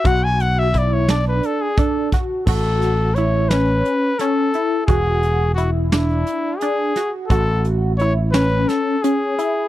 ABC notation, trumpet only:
X:1
M:7/8
L:1/16
Q:1/4=87
K:A
V:1 name="Trumpet"
f g f e d c d B A G A2 z2 | A4 c2 B4 A4 | G4 F2 E4 G3 z | A2 z2 c2 B2 A2 G4 |]